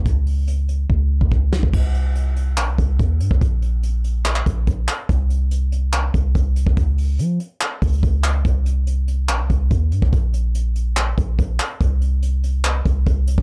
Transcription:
<<
  \new Staff \with { instrumentName = "808-style bass" } { \clef bass \time 4/4 \key c \phrygian \tempo 4 = 143 des,2 des,8. des,4 des,16 | c,2 bes,,16 c,16 c,8 ees,8 g,16 c,16 | bes,,2~ bes,,8 bes,,8 bes,,8 r8 | c,2~ c,8 c,8 c,8. c,16 |
des,4 f8 r4 des,8 des,4 | c,2 bes,,16 c,16 c,8 ees,8 g,16 c,16 | bes,,2~ bes,,8 bes,,8 bes,,8 r8 | c,2~ c,8 c,8 c,8. des,16 | }
  \new DrumStaff \with { instrumentName = "Drums" } \drummode { \time 4/4 <hh bd>8 hho8 hh8 hh8 bd8. bd16 bd8 sn16 bd16 | <cymc bd>8 hh8 hh8 hh8 <hc hh>8 <hh bd>8 <hh bd>8 hh16 bd16 | <hh bd>8 hh8 hh8 hh8 <hc hh>16 hc16 <hh bd>8 <hh bd>8 <hc hh>8 | <hh bd>8 hh8 hh8 hh8 <hc hh>8 <hh bd>8 <hh bd>8 hh16 bd16 |
<hh bd>8 hho8 hh8 hh8 <hc hh>8 <hh bd>32 hh32 hh32 hh32 <hh bd>8 <hc hh>8 | <hh bd>8 hh8 hh8 hh8 <hc hh>8 <hh bd>8 <hh bd>8 hh16 bd16 | <hh bd>8 hh8 hh8 hh8 <hc hh>8 <hh bd>8 <hh bd>8 <hc hh>8 | <hh bd>8 hh8 hh8 hh8 <hc hh>8 <hh bd>8 <hh bd>8 hh16 bd16 | }
>>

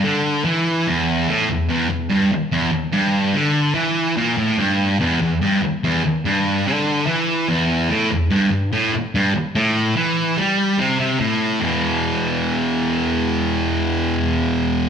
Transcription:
\new Staff \with { instrumentName = "Distorted electric guitar" } { \clef bass \time 4/4 \key e \minor \tempo 4 = 145 d4 e4 e,4 a,8 e,8 | e,8 e,8 g,8 r8 e,8 r8 g,4 | d4 e4 ais,8 a,8 g,4 | e,8 e,8 g,8 r8 e,8 r8 g,4 |
d4 e4 e,4 a,8 e,8 | g,8 g,8 a,8 r8 g,8 r8 a,4 | e4 g4 c8 c8 a,4 | <e, b, e>1~ |
<e, b, e>1 | }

